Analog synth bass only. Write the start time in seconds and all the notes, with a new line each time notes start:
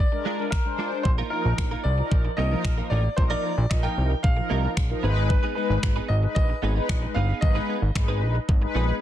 1.05 A#1
1.45 A#1
1.58 A#1
1.85 C2
2.11 A#1
2.38 C2
2.65 A#1
2.91 A1
3.18 A#1
3.58 A#1
3.71 A#1
3.98 C2
4.24 A#1
4.51 C2
4.77 A#1
5.03 G#1
5.70 G#1
5.83 G#1
6.10 G#1
6.36 A#1
6.63 G#1
6.89 A#1
7.16 G1
7.42 G#1
7.82 G#1
7.96 G#1
8.22 A#1
8.49 G#1
8.75 A#1